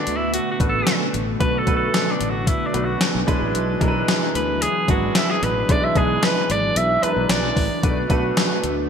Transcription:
0.00 1.40 B2 medium
0.00 3.24 D3 medium
0.00 0.60 A3 medium
0.00 1.38 A3 medium
0.00 3.24 B3 medium
0.00 0.18 D4 medium
0.00 0.60 D4 medium
0.00 0.60 F#4 medium
0.00 0.60 B4 medium
0.07 0.37 D2 medium
0.07 closed hi-hat medium
0.16 0.33 E4 medium
0.34 0.50 F#4 medium
0.34 closed hi-hat medium
0.51 0.59 F#4 medium
0.60 0.80 A1 medium
0.60 1.16 A3 medium
0.60 1.17 D4 medium
0.60 1.17 F#4 medium
0.60 1.17 B4 medium
0.60 kick medium
0.60 closed hi-hat medium
0.69 0.94 A4 medium
0.87 snare loud
0.87 closed hi-hat medium
1.14 1.34 A1 medium
1.14 closed hi-hat medium
1.39 1.61 B1 medium
1.39 2.17 B2 medium
1.39 7.79 F#3 medium
1.39 1.59 A3 medium
1.39 1.59 D4 medium
1.39 1.59 F#4 medium
1.39 1.60 B4 loud
1.39 1.59 B4 medium
1.39 kick loud
1.39 closed hi-hat medium
1.58 1.76 A4 medium
1.66 1.87 B1 medium
1.66 2.42 A3 medium
1.66 2.42 D4 medium
1.66 2.43 F#4 medium
1.66 2.43 B4 medium
1.66 kick medium
1.66 closed hi-hat medium
1.76 2.13 A4 medium
1.94 snare medium
1.94 closed hi-hat medium
2.11 2.31 D4 medium
2.21 2.51 A1 medium
2.21 closed hi-hat medium
2.30 2.49 F#4 medium
2.47 2.68 E4 medium
2.47 kick medium
2.47 closed hi-hat medium
2.66 2.86 D4 medium
2.73 2.94 B1 medium
2.73 3.27 A3 medium
2.73 3.25 D4 medium
2.73 3.28 F#4 medium
2.73 3.26 B4 medium
2.73 closed hi-hat medium
2.85 3.11 F#4 medium
3.01 snare loud
3.01 closed hi-hat medium
3.15 3.25 B1 medium
3.27 3.38 B1 medium
3.27 4.04 B2 medium
3.27 7.79 E3 medium
3.27 3.70 G#3 medium
3.27 3.70 D4 medium
3.27 7.79 D4 medium
3.27 3.71 E4 medium
3.27 3.71 B4 loud
3.27 kick loud
3.27 closed hi-hat medium
3.41 3.51 A1 medium
3.55 3.75 B1 medium
3.55 closed hi-hat medium
3.80 4.01 B1 medium
3.80 4.56 G#3 medium
3.80 4.56 D4 medium
3.80 4.57 E4 medium
3.80 3.88 A#4 medium
3.80 kick medium
3.80 closed hi-hat medium
3.88 4.60 B4 medium
4.08 snare loud
4.08 closed hi-hat medium
4.35 4.65 D2 medium
4.35 4.63 B4 medium
4.35 closed hi-hat medium
4.62 4.89 G#4 medium
4.62 closed hi-hat loud
4.88 5.09 G#1 medium
4.88 5.45 G#3 medium
4.88 5.45 D4 medium
4.88 5.45 E4 medium
4.88 5.18 F#4 medium
4.88 5.46 B4 medium
4.88 kick loud
4.88 closed hi-hat medium
5.15 5.32 E4 medium
5.15 snare loud
5.15 closed hi-hat medium
5.31 5.45 G#4 medium
5.42 5.62 A1 medium
5.42 6.19 B2 medium
5.42 5.73 B4 medium
5.42 closed hi-hat medium
5.69 5.89 B1 medium
5.69 5.88 G#3 medium
5.69 5.88 D4 medium
5.69 5.88 E4 medium
5.69 5.88 B4 medium
5.69 5.85 D5 loud
5.69 kick loud
5.69 closed hi-hat medium
5.84 5.99 E5 loud
5.96 6.16 B1 loud
5.96 6.71 G#3 medium
5.96 6.71 D4 medium
5.96 6.72 E4 medium
5.96 6.25 G#4 medium
5.96 6.72 B4 medium
5.96 kick medium
5.96 closed hi-hat medium
6.23 6.53 B4 medium
6.23 snare loud
6.23 closed hi-hat medium
6.49 6.69 G#1 medium
6.49 6.79 D5 medium
6.49 closed hi-hat medium
6.76 6.96 B1 loud
6.76 7.05 E5 loud
6.76 closed hi-hat loud
7.03 7.59 G#3 medium
7.03 7.59 D4 medium
7.03 7.60 E4 medium
7.03 7.10 A#4 medium
7.03 7.32 B4 medium
7.03 muted fretless electric bass stroke soft
7.03 closed hi-hat medium
7.10 7.63 B4 medium
7.16 7.26 B1 medium
7.29 7.50 B1 medium
7.29 8.10 D5 medium
7.29 snare loud
7.29 closed hi-hat medium
7.57 7.67 A1 medium
7.57 kick medium
7.57 open hi-hat medium
7.82 8.03 B1 medium
7.82 8.60 B2 medium
7.82 8.02 A3 medium
7.82 8.89 A3 medium
7.82 8.89 B3 medium
7.82 8.02 D4 medium
7.82 8.89 D4 medium
7.82 8.02 F#4 medium
7.82 8.02 B4 medium
7.82 kick loud
7.82 closed hi-hat medium
8.09 8.30 B1 medium
8.09 8.85 A3 medium
8.09 8.86 D4 medium
8.09 8.86 F#4 medium
8.09 8.86 B4 medium
8.09 kick medium
8.09 closed hi-hat medium
8.37 snare loud
8.37 closed hi-hat medium
8.64 8.89 D2 medium
8.64 closed hi-hat medium

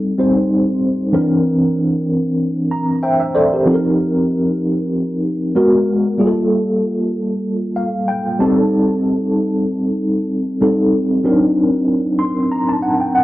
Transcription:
0.00 0.15 G3 medium
0.00 0.15 C4 medium
0.00 0.15 D#4 medium
0.00 0.19 A4 medium
0.18 1.13 G3 medium
0.18 1.12 C4 medium
0.18 1.14 D#4 medium
0.18 1.14 C5 medium
1.12 3.61 E3 medium
1.12 3.62 C4 medium
1.12 3.62 D4 medium
1.12 2.99 A#4 medium
2.71 3.01 A#5 medium
3.03 3.33 C5 soft
3.03 3.19 E5 medium
3.03 3.19 G5 medium
3.20 3.33 E5 medium
3.35 3.51 A4 medium
3.35 3.51 C5 medium
3.35 3.64 D5 medium
3.53 3.82 G4 soft
3.53 3.73 A#4 soft
3.66 5.51 F3 medium
3.66 5.52 C4 medium
3.66 5.52 D#4 medium
3.66 3.74 A4 medium
3.74 5.55 A#4 medium
5.55 6.19 G#3 medium
5.55 6.19 B3 medium
5.55 6.19 F#4 medium
5.55 6.19 A#4 medium
6.18 8.35 G3 medium
6.18 8.36 A#3 medium
6.18 8.36 F4 medium
6.18 6.26 G#4 medium
6.27 8.40 A4 medium
7.76 8.06 F5 medium
8.08 8.37 G5 medium
8.39 10.57 G3 medium
8.39 10.57 C4 medium
8.39 10.58 D#4 medium
8.39 10.58 A4 medium
8.39 8.69 A5 medium
10.61 11.24 G3 medium
10.61 11.23 C4 medium
10.61 11.24 D#4 soft
10.61 11.25 A4 medium
11.24 13.24 F#3 medium
11.24 13.24 C4 medium
11.24 13.24 D4 medium
11.24 13.24 D#4 medium
11.24 12.80 A#4 medium
12.19 12.49 C6 medium
12.52 12.67 A#5 medium
12.69 12.82 A5 medium
12.82 12.99 F#5 medium
13.00 13.14 G5 medium
13.15 13.24 F#5 medium

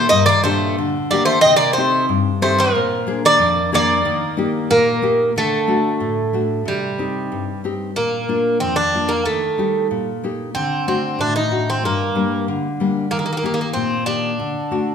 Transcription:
0.09 0.75 G2 medium
0.09 0.26 A#3 medium
0.09 0.25 D#5 medium
0.26 0.43 A#3 medium
0.26 0.42 D5 medium
0.44 0.97 A#2 soft
0.44 0.75 A3 medium
0.44 0.97 D4 soft
0.44 0.97 G4 soft
0.44 0.74 C5 medium
0.78 1.41 D3 medium
1.11 1.25 A#3 medium
1.11 1.37 A#3 soft
1.11 1.37 D4 soft
1.11 1.37 G4 soft
1.11 1.25 D5 medium
1.25 1.41 A3 medium
1.25 1.41 C5 medium
1.41 1.57 C4 medium
1.41 1.56 D#5 medium
1.45 2.08 C3 medium
1.56 1.73 A#3 medium
1.56 1.73 D5 medium
1.73 2.05 A3 medium
1.73 2.05 C5 medium
1.78 2.29 C4 soft
1.78 2.29 D#4 soft
1.78 2.30 G4 soft
2.09 2.72 G2 medium
2.42 2.57 A3 medium
2.42 2.68 C4 soft
2.42 2.68 D#4 soft
2.42 2.68 G4 medium
2.42 2.57 C5 medium
2.58 3.19 F3 medium
2.58 3.20 A#4 medium
2.75 3.38 A#2 medium
3.07 3.59 A#3 soft
3.07 3.59 D4 soft
3.07 3.60 G#4 medium
3.25 3.70 A#3 medium
3.25 3.70 D5 medium
3.39 4.03 F2 medium
3.72 3.98 A#3 soft
3.72 5.00 A#3 medium
3.72 3.99 D4 soft
3.72 3.99 G#4 medium
3.72 5.00 D5 medium
4.05 4.68 D#3 medium
4.37 4.89 A#3 soft
4.37 4.90 D#4 soft
4.37 4.90 G4 medium
4.71 5.34 A#2 medium
4.71 5.32 A#3 medium
5.02 5.29 A#3 soft
5.02 5.29 D#4 soft
5.02 5.29 G4 medium
5.36 5.99 D3 medium
5.36 6.63 A3 medium
5.67 6.20 A3 soft
5.67 6.20 D4 soft
5.67 6.20 F#4 soft
6.00 6.64 A2 medium
6.33 6.59 A3 soft
6.33 6.60 D4 soft
6.33 6.60 F#4 soft
6.65 7.29 C3 medium
6.65 7.61 G3 medium
6.98 7.50 C4 soft
6.98 7.51 D#4 soft
6.98 7.51 G4 soft
7.32 7.95 G2 soft
7.64 7.90 C4 soft
7.64 7.90 D#4 soft
7.64 7.90 G4 soft
7.96 8.60 A#2 soft
7.96 8.60 A#3 medium
8.28 8.80 A#3 soft
8.28 8.81 D4 soft
8.28 8.81 F4 soft
8.60 9.25 F2 medium
8.60 8.76 C4 medium
8.76 9.10 D4 medium
8.94 9.20 A#3 soft
8.94 9.20 D4 soft
8.94 9.20 F4 soft
9.09 9.24 A#3 medium
9.25 9.89 D#3 soft
9.25 9.86 A3 medium
9.58 10.10 G3 soft
9.58 10.10 D#4 soft
9.58 10.10 G4 soft
9.91 10.53 A#2 soft
10.24 10.49 A#3 soft
10.24 10.49 D#4 soft
10.24 10.49 G4 soft
10.55 11.18 D3 medium
10.55 10.87 C4 medium
10.87 11.38 A3 soft
10.87 11.21 C4 medium
10.87 11.39 D4 soft
10.87 11.39 F#4 soft
11.19 11.81 A2 soft
11.19 11.35 D4 medium
11.36 11.69 D#4 medium
11.51 11.77 A3 soft
11.51 11.77 D4 soft
11.51 11.77 F#4 soft
11.70 11.83 C4 medium
11.83 12.45 G2 medium
11.83 12.44 A#3 medium
12.15 12.66 G3 soft
12.15 12.67 A#3 soft
12.15 12.67 D4 soft
12.48 13.10 D3 soft
12.80 13.05 G3 soft
12.80 13.06 A#3 soft
12.80 13.06 D4 soft
13.11 13.74 D#3 medium
13.11 13.18 A#3 medium
13.19 13.24 A#3 soft
13.26 13.31 A#3 medium
13.33 13.36 A#3 medium
13.37 13.44 A#3 medium
13.43 13.94 A#3 soft
13.43 13.53 A#3 soft
13.43 13.94 D#4 soft
13.43 13.94 G4 soft
13.54 13.60 A#3 medium
13.61 13.69 A#3 soft
13.74 14.37 A#2 medium
13.74 14.04 C4 medium
14.06 14.32 D#3 soft
14.06 14.32 A#3 soft
14.06 14.95 D4 medium
14.06 14.32 G4 soft
14.40 14.95 D3 soft
14.71 14.95 A3 soft
14.71 14.95 D4 soft
14.71 14.95 F#4 soft

